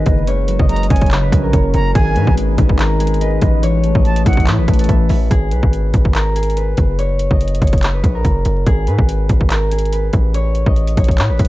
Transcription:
Already playing: D#3 G#3 D#4 G#4 B4
0.06 F#1 D#5, kick, closed hi-hat
0.27 C#3 F#3 C#4 A#4 C#5, closed hi-hat
0.48 F#3, closed hi-hat
0.59 F#1 D#5, kick
0.69 C#3 A#5, closed hi-hat
0.76 closed hi-hat
0.83 closed hi-hat
0.90 F#1 C#4 C#5 G#5, kick, closed hi-hat
0.96 closed hi-hat
1.01 kick, closed hi-hat
1.06 closed hi-hat
1.11 C#3, clap, closed hi-hat
1.22 B4
1.32 A#1 F#3, kick, closed hi-hat
1.44 A#4
1.53 F#1 C#5, kick, closed hi-hat
1.74 F#1 C#5 A#5, closed hi-hat
1.95 G#1 D#3 G#3 D#4 G#4 B4 G#5, kick, closed hi-hat
2.16 G#2 G#3 B4, closed hi-hat
2.27 G#1, kick
2.37 D#3, closed hi-hat
2.58 G#1 D#4, kick, closed hi-hat
2.69 kick
2.79 D#3 A#4, clap, closed hi-hat
3.00 G#3 G#4, closed hi-hat
3.07 closed hi-hat
3.14 closed hi-hat
3.21 B4 D#5, closed hi-hat
3.42 A1 D#5, kick, closed hi-hat
3.63 E3 A3 E4 C#5, closed hi-hat
3.84 A3, closed hi-hat
3.95 A1 D#5, kick
4.05 E3 A5, closed hi-hat
4.16 closed hi-hat
4.26 A1 E4 C#5 F#5, kick, closed hi-hat
4.33 closed hi-hat
4.37 kick, closed hi-hat
4.47 A2 E3, clap, closed hi-hat
4.58 A1 B4
4.68 A1 A3, kick, closed hi-hat
4.73 closed hi-hat
4.79 A4, closed hi-hat
4.84 closed hi-hat
4.89 A1 E5, kick, closed hi-hat
5.09 A1 E5, open hi-hat
5.31 G#1 G#4, kick, closed hi-hat
5.51 B1 B4, closed hi-hat
5.63 G#1, kick
5.73 closed hi-hat
5.94 G#1, kick, closed hi-hat
6.05 kick
6.15 A#4, clap, closed hi-hat
6.36 G#4, closed hi-hat
6.43 closed hi-hat
6.50 closed hi-hat
6.57 B4, closed hi-hat
6.77 F#1, kick, closed hi-hat
6.99 C#5, closed hi-hat
7.19 closed hi-hat
7.31 F#1 D#5, kick
7.41 closed hi-hat
7.48 closed hi-hat
7.55 closed hi-hat
7.62 F#1 C#5, kick, closed hi-hat
7.67 closed hi-hat
7.73 kick, closed hi-hat
7.78 closed hi-hat
7.83 clap, closed hi-hat
7.94 B4
8.04 A#1, kick, closed hi-hat
8.15 A#4
8.25 F#1, kick, closed hi-hat
8.45 F#1, closed hi-hat
8.66 G#1 G#4, kick, closed hi-hat
8.87 G#2 B4, closed hi-hat
8.99 G#1, kick
9.09 closed hi-hat
9.29 G#1, kick, closed hi-hat
9.41 kick
9.50 A#4, clap, closed hi-hat
9.71 G#4, closed hi-hat
9.78 closed hi-hat
9.85 closed hi-hat
9.92 B4, closed hi-hat
10.13 A1, kick, closed hi-hat
10.34 C#5, closed hi-hat
10.55 closed hi-hat
10.66 A1 D#5, kick
10.76 closed hi-hat
10.87 closed hi-hat
10.97 A1 C#5, kick, closed hi-hat
11.04 closed hi-hat
11.08 kick, closed hi-hat
11.18 A2, clap, closed hi-hat
11.29 A1 B4
11.39 A1, kick, closed hi-hat
11.45 closed hi-hat

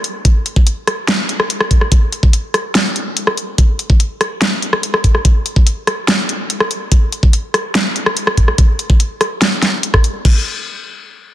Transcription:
0.04 closed hi-hat
0.25 kick, closed hi-hat
0.46 closed hi-hat
0.56 kick
0.67 closed hi-hat
0.87 cross-stick, closed hi-hat
1.08 snare, closed hi-hat
1.29 closed hi-hat
1.40 cross-stick
1.50 closed hi-hat
1.61 cross-stick
1.71 kick, closed hi-hat
1.81 cross-stick
1.92 kick, closed hi-hat
2.12 closed hi-hat
2.23 kick
2.33 closed hi-hat
2.54 cross-stick, closed hi-hat
2.75 snare, closed hi-hat
2.96 closed hi-hat
3.17 closed hi-hat
3.27 cross-stick
3.37 closed hi-hat
3.58 kick, closed hi-hat
3.79 closed hi-hat
3.90 kick
4.00 closed hi-hat
4.21 cross-stick, closed hi-hat
4.42 snare, closed hi-hat
4.62 closed hi-hat
4.73 cross-stick
4.83 closed hi-hat
4.94 cross-stick
5.04 kick, closed hi-hat
5.15 cross-stick
5.25 kick, closed hi-hat
5.46 closed hi-hat
5.56 kick
5.67 closed hi-hat
5.87 cross-stick, closed hi-hat
6.08 snare, closed hi-hat
6.29 closed hi-hat
6.50 closed hi-hat
6.60 cross-stick
6.71 closed hi-hat
6.92 kick, closed hi-hat
7.12 closed hi-hat
7.23 kick
7.33 closed hi-hat
7.54 cross-stick, closed hi-hat
7.75 snare, closed hi-hat
7.96 closed hi-hat
8.06 cross-stick
8.17 closed hi-hat
8.27 cross-stick
8.37 kick, closed hi-hat
8.48 cross-stick
8.58 kick, closed hi-hat
8.79 closed hi-hat
8.90 kick
9.00 closed hi-hat
9.21 cross-stick, closed hi-hat
9.42 snare, closed hi-hat
9.62 snare, closed hi-hat
9.83 closed hi-hat
9.94 kick, cross-stick
10.04 closed hi-hat
10.25 kick, crash

